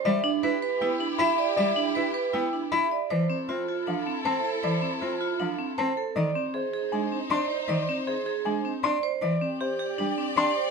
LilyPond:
<<
  \new Staff \with { instrumentName = "Grand piano" } { \time 4/4 \key f \lydian \tempo 4 = 157 d''8 r8 b'8 r8 g''8 r8 b''8 r8 | d''8 r8 b'8 r8 g''8 r8 b''8 r8 | d''8 r8 c''8 r8 f''8 r8 a''8 r8 | d''8 r8 c''8 r8 f''8 r8 a''8 r8 |
d''8 r8 c''8 r8 aes''8 r8 c'''8 r8 | d''8 r8 c''8 r8 aes''8 r8 c'''8 r8 | d''8 r8 c''8 r8 g''8 r8 c'''8 r8 | }
  \new Staff \with { instrumentName = "Vibraphone" } { \time 4/4 \key f \lydian e''8 d'8 b'8 b'8 e'8 d'8 e''8 d''8 | e''8 d'8 b'8 b'8 e'8 d'8 e''8 d''8 | c''8 c'8 f'8 f'8 d'8 c'8 c''8 a'8 | c''8 c'8 f'8 f'8 d'8 c'8 c''8 a'8 |
d''8 c'8 aes'8 aes'8 d'8 c'8 d''8 c''8 | d''8 c'8 aes'8 aes'8 d'8 c'8 d''8 c''8 | d''8 c'8 g'8 g'8 d'8 c'8 d''8 c''8 | }
  \new Staff \with { instrumentName = "String section" } { \time 4/4 \key f \lydian <e' g'>1~ | <e' g'>2.~ <e' g'>8 r8 | <e' a'>1~ | <e' a'>2.~ <e' a'>8 r8 |
<ees' c''>1~ | <ees' c''>2.~ <ees' c''>8 r8 | <g' d''>1 | }
  \new Staff \with { instrumentName = "Cello" } { \time 4/4 \key f \lydian g8 r8 e'8 r8 b8 r8 e'8 r8 | g8 r8 e'8 r8 b8 r8 e'8 r8 | e8 r8 c'8 r8 f8 r8 c'8 r8 | e8 r8 c'8 r8 f8 r8 c'8 r8 |
ees8 r4. aes8 r8 d'8 r8 | ees8 r4. aes8 r8 d'8 r8 | e8 r4. g8 r8 d'8 r8 | }
>>